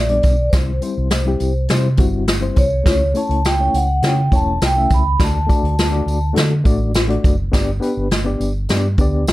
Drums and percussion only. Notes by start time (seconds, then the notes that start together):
0.09 closed hi-hat
0.23 kick, closed hi-hat, tambourine
0.53 kick, snare, closed hi-hat, tambourine
0.82 closed hi-hat, tambourine
1.10 snare, closed hi-hat, tambourine
1.40 closed hi-hat, tambourine
1.68 snare, closed hi-hat, tambourine
1.97 kick, closed hi-hat, tambourine
2.27 snare, closed hi-hat, tambourine
2.56 kick, closed hi-hat, tambourine
2.86 kick, snare, closed hi-hat, tambourine
3.15 closed hi-hat, tambourine
3.30 closed hi-hat
3.45 snare, closed hi-hat, tambourine
3.74 closed hi-hat, tambourine
4.02 snare, closed hi-hat, tambourine
4.32 kick, closed hi-hat, tambourine
4.62 snare, closed hi-hat, tambourine
4.90 kick, closed hi-hat, tambourine
5.20 kick, snare, closed hi-hat, tambourine
5.49 kick, closed hi-hat, tambourine
5.65 closed hi-hat
5.79 snare, closed hi-hat, tambourine
6.08 closed hi-hat, tambourine
6.36 snare, closed hi-hat, tambourine
6.65 kick, closed hi-hat, tambourine
6.94 snare, closed hi-hat, tambourine
7.10 closed hi-hat
7.24 kick, closed hi-hat, tambourine
7.53 kick, snare, closed hi-hat, tambourine
7.82 closed hi-hat, tambourine
8.11 snare, closed hi-hat, tambourine
8.40 closed hi-hat, tambourine
8.69 snare, closed hi-hat, tambourine
8.98 kick, closed hi-hat, tambourine
9.27 snare, closed hi-hat, tambourine